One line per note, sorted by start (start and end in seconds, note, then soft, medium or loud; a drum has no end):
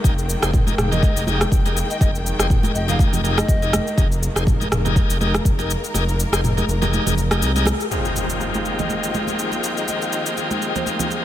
0.00 7.87 D#3 medium
0.00 7.87 G#3 medium
0.00 7.87 A#3 medium
0.00 0.14 D#4 medium
0.00 0.14 G4 medium
0.00 0.14 G#4 medium
0.04 0.34 F1 loud
0.04 0.14 A#4 medium
0.04 3.97 G5 medium
0.04 kick loud
0.04 muted conga medium
0.04 shaker medium
0.18 shaker medium
0.29 shaker medium
0.42 0.71 F1 medium
0.42 0.50 D#4 medium
0.42 0.51 G4 medium
0.42 0.51 G#4 medium
0.42 0.51 C5 medium
0.42 cross-stick medium
0.42 shaker medium
0.54 kick loud
0.54 mid tom loud
0.54 muted conga soft
0.54 shaker medium
0.67 0.75 D#4 medium
0.67 0.75 G4 medium
0.67 0.75 G#4 medium
0.67 0.75 A#4 medium
0.67 high conga medium
0.67 shaker medium
0.78 1.08 F1 medium
0.78 cross-stick medium
0.78 mid tom medium
0.78 shaker soft
0.91 1.25 D#4 medium
0.91 1.24 G4 medium
0.91 1.24 G#4 medium
0.91 1.25 A#4 medium
0.91 1.27 D#5 medium
0.91 muted conga soft
0.91 low conga medium
0.91 shaker soft
1.03 kick loud
1.03 high conga medium
1.03 shaker medium
1.16 1.45 F1 medium
1.16 shaker medium
1.27 1.43 D#4 medium
1.27 1.43 G4 medium
1.27 1.43 G#4 medium
1.27 1.43 A#4 loud
1.27 muted conga soft
1.27 high conga medium
1.27 shaker soft
1.41 cross-stick medium
1.41 high conga medium
1.41 shaker medium
1.52 1.82 F1 medium
1.52 kick loud
1.52 shaker medium
1.66 1.79 D#4 medium
1.66 1.79 G4 medium
1.66 1.79 G#4 medium
1.66 1.79 A#4 loud
1.66 muted conga soft
1.66 shaker soft
1.77 shaker medium
1.90 1.97 D#5 medium
1.90 shaker soft
2.00 2.31 F1 loud
2.00 2.11 D#4 medium
2.00 2.11 G4 medium
2.00 2.11 G#4 medium
2.00 2.11 A#4 medium
2.00 2.09 D#5 medium
2.00 kick loud
2.00 muted conga soft
2.00 shaker medium
2.15 shaker soft
2.26 shaker medium
2.39 2.68 F1 medium
2.39 2.47 D#4 medium
2.39 2.47 G4 medium
2.39 2.47 G#4 medium
2.39 2.47 C5 medium
2.39 cross-stick medium
2.39 shaker medium
2.50 kick loud
2.50 mid tom loud
2.50 muted conga soft
2.50 shaker medium
2.63 2.72 D#4 medium
2.63 2.72 G4 medium
2.63 2.72 G#4 medium
2.63 2.72 A#4 medium
2.63 high conga medium
2.63 shaker medium
2.74 3.05 F1 medium
2.74 2.85 D#5 medium
2.74 shaker soft
2.88 3.21 D#4 medium
2.88 3.21 G4 medium
2.88 3.21 G#4 medium
2.88 3.21 A#4 medium
2.88 3.01 F5 medium
2.88 muted conga medium
2.88 low conga medium
2.88 shaker soft
2.99 kick loud
2.99 high conga medium
2.99 shaker soft
3.13 3.42 F1 medium
3.13 low conga medium
3.13 shaker medium
3.24 3.39 D#4 loud
3.24 3.39 G4 medium
3.24 3.39 G#4 medium
3.24 3.39 A#4 loud
3.24 muted conga soft
3.24 shaker soft
3.37 4.06 D#5 medium
3.37 cross-stick medium
3.37 high conga medium
3.37 shaker medium
3.48 3.79 F1 medium
3.48 kick loud
3.48 shaker medium
3.62 3.76 D#4 loud
3.62 3.76 G4 medium
3.62 3.76 G#4 medium
3.62 3.76 A#4 loud
3.62 muted conga soft
3.62 shaker medium
3.73 cross-stick medium
3.73 high conga loud
3.73 shaker medium
3.87 shaker soft
3.98 4.28 F1 loud
3.98 4.08 D#4 medium
3.98 4.08 G4 medium
3.98 4.08 G#4 medium
3.98 4.08 A#4 medium
3.98 7.90 A#4 medium
3.98 kick loud
3.98 muted conga soft
3.98 shaker medium
4.12 shaker soft
4.23 shaker medium
4.36 4.65 F1 medium
4.36 4.44 D#4 medium
4.36 4.44 G4 medium
4.36 4.44 G#4 medium
4.36 4.44 C5 medium
4.36 cross-stick medium
4.36 shaker medium
4.47 kick loud
4.47 mid tom medium
4.47 muted conga soft
4.47 shaker medium
4.60 4.68 D#4 medium
4.60 4.68 G4 medium
4.60 4.68 G#4 medium
4.60 4.68 A#4 medium
4.60 high conga medium
4.60 shaker medium
4.71 5.01 F1 medium
4.71 cross-stick medium
4.71 mid tom medium
4.71 shaker soft
4.85 5.18 D#4 medium
4.85 5.18 G4 medium
4.85 5.18 G#4 medium
4.85 5.18 A#4 medium
4.85 muted conga medium
4.85 low conga medium
4.85 shaker soft
4.96 kick loud
4.96 high conga medium
4.96 shaker medium
5.10 5.39 F1 medium
5.10 shaker medium
5.20 5.36 D#4 medium
5.20 5.36 G4 medium
5.20 5.36 G#4 medium
5.20 5.36 A#4 loud
5.20 muted conga soft
5.20 high conga medium
5.20 shaker soft
5.34 cross-stick medium
5.34 high conga medium
5.34 shaker medium
5.45 5.75 F1 medium
5.45 kick loud
5.45 shaker medium
5.59 5.72 D#4 medium
5.59 5.72 G4 medium
5.59 5.72 G#4 medium
5.59 5.72 A#4 loud
5.59 muted conga soft
5.59 shaker soft
5.70 shaker medium
5.84 shaker soft
5.94 6.24 F1 loud
5.94 6.04 D#4 medium
5.94 6.04 G4 medium
5.94 6.04 G#4 medium
5.94 6.04 A#4 medium
5.94 muted conga medium
5.94 shaker medium
6.09 shaker soft
6.20 shaker medium
6.32 6.61 F1 medium
6.32 6.41 D#4 medium
6.32 6.41 G4 medium
6.32 6.41 G#4 medium
6.32 6.41 C5 medium
6.32 cross-stick medium
6.32 shaker medium
6.44 mid tom medium
6.44 muted conga soft
6.44 shaker medium
6.57 6.65 D#4 medium
6.57 6.65 G4 medium
6.57 6.65 G#4 medium
6.57 6.65 A#4 medium
6.57 high conga medium
6.57 shaker medium
6.68 6.98 F1 medium
6.68 shaker medium
6.82 7.15 D#4 medium
6.82 7.15 G4 medium
6.82 7.15 G#4 medium
6.82 7.15 A#4 medium
6.82 muted conga medium
6.82 low conga medium
6.82 shaker soft
6.93 high conga medium
6.93 shaker soft
7.06 7.43 F1 loud
7.06 low conga medium
7.06 shaker medium
7.18 muted conga soft
7.18 shaker soft
7.31 7.52 D#4 medium
7.31 7.52 G4 medium
7.31 7.52 G#4 medium
7.31 7.52 A#4 loud
7.31 cross-stick medium
7.31 high conga medium
7.31 shaker medium
7.42 7.72 C2 loud
7.42 shaker medium
7.55 7.69 D#4 loud
7.55 7.69 G4 medium
7.55 7.69 G#4 medium
7.55 7.69 A#4 loud
7.55 muted conga medium
7.55 shaker medium
7.66 cross-stick medium
7.66 high conga loud
7.66 shaker medium
7.80 shaker soft
7.91 11.25 D#3 medium
7.91 11.25 F3 medium
7.91 11.25 G#3 medium
7.91 11.25 A#3 medium
7.91 11.25 C4 medium
7.91 11.25 D#4 medium
7.91 11.25 F4 medium
7.91 11.25 G4 medium
7.91 11.25 G#4 medium
7.91 11.25 A#4 medium
7.91 11.25 G5 medium
7.91 impact medium
7.91 muted conga soft
7.91 shaker medium
8.05 shaker soft
8.16 shaker medium
8.30 shaker medium
8.40 muted conga soft
8.40 shaker soft
8.54 high conga medium
8.54 shaker soft
8.65 shaker soft
8.78 9.14 D#5 medium
8.78 muted conga soft
8.78 low conga medium
8.78 shaker soft
8.89 high conga medium
8.89 shaker soft
9.03 shaker medium
9.14 muted conga soft
9.14 high conga medium
9.14 shaker soft
9.27 high conga medium
9.27 shaker soft
9.39 shaker medium
9.52 muted conga soft
9.52 shaker soft
9.64 shaker medium
9.77 9.84 D#5 medium
9.77 shaker soft
9.88 9.97 D#5 medium
9.88 muted conga soft
9.88 shaker medium
10.02 shaker soft
10.12 10.21 D#5 medium
10.12 shaker medium
10.26 10.33 D#5 medium
10.26 shaker medium
10.37 muted conga soft
10.37 shaker soft
10.51 high conga medium
10.51 shaker medium
10.62 shaker soft
10.76 10.88 C5 medium
10.76 muted conga soft
10.76 low conga medium
10.76 shaker soft
10.86 high conga medium
10.86 shaker soft
10.99 low conga medium
10.99 shaker medium
11.11 muted conga soft
11.11 shaker soft